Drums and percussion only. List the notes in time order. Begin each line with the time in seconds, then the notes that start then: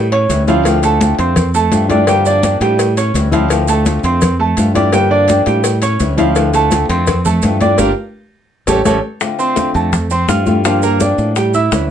0.12 cowbell, high conga
0.30 cowbell, high conga, maracas
0.48 cowbell, high conga, maracas
0.65 cowbell, high conga, maracas
0.83 cowbell, high conga, maracas
1.01 cowbell, high conga, maracas
1.19 cowbell, high conga, maracas
1.36 cowbell, high conga, low conga, maracas
1.54 high conga, maracas
1.72 cowbell, high conga, maracas
1.90 cowbell, high conga, maracas
2.07 cowbell, high conga, maracas
2.26 high conga, maracas
2.43 cowbell, high conga, maracas
2.61 cowbell, high conga, maracas
2.79 cowbell, high conga, maracas
2.97 cowbell, high conga, maracas
3.15 cowbell, high conga, maracas
3.32 cowbell, high conga, maracas
3.50 cowbell, maracas
3.68 cowbell, high conga, maracas
3.86 cowbell, high conga, maracas
4.03 cowbell, high conga, maracas
4.21 cowbell, high conga, low conga, maracas
4.40 high conga
4.57 cowbell, high conga, maracas
4.75 cowbell, high conga, maracas
4.93 cowbell, high conga, maracas
5.12 high conga
5.28 cowbell, high conga, maracas
5.46 cowbell, high conga, maracas
5.64 cowbell, high conga, maracas
5.82 cowbell, high conga, maracas
6.00 cowbell, high conga, maracas
6.18 cowbell, high conga, maracas
6.36 cowbell, high conga, maracas
6.54 cowbell, high conga, maracas
6.71 cowbell, high conga, maracas
6.90 cowbell, high conga, maracas
7.07 cowbell, high conga, low conga, maracas
7.25 high conga, low conga, maracas
7.42 cowbell, high conga, maracas
7.61 cowbell, high conga, maracas
7.78 cowbell, high conga, maracas
8.67 cowbell, high conga, maracas
8.85 cowbell, high conga, maracas
9.21 high bongo, high conga, maracas
9.39 high bongo, high conga, maracas
9.56 high bongo, high conga, maracas
9.74 high bongo, high conga, maracas
9.93 high bongo, high conga, low conga, maracas
10.10 high bongo, high conga, maracas
10.28 high bongo, low bongo, high conga, maracas
10.46 high conga, maracas
10.65 high bongo, high conga, maracas
10.82 high bongo, high conga, maracas
11.00 high bongo, high conga, maracas
11.18 high bongo, high conga, maracas
11.36 high bongo, high conga, maracas
11.54 high conga, maracas
11.72 high bongo, low bongo, high conga, maracas